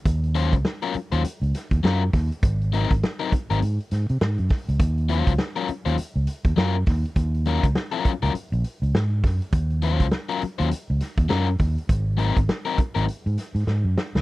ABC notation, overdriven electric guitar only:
X:1
M:4/4
L:1/16
Q:"Swing 16ths" 1/4=101
K:Ebdor
V:1 name="Overdriven electric guitar"
z2 [G,DFc] z2 [G,DFB] z [G,DFc] z4 [G,DFB] z3 | z2 [G,CEB] z2 [G,CEB] z [G,CEB] z8 | z2 [G,DFc] z2 [G,DFB] z [G,DFc] z4 [G,DFB] z3 | z2 [G,DFB] z2 [G,DFB] z [G,DFB] z8 |
z2 [G,DFc] z2 [G,DFB] z [G,DFc] z4 [G,DFB] z3 | z2 [G,CEB] z2 [G,CEB] z [G,CEB] z8 |]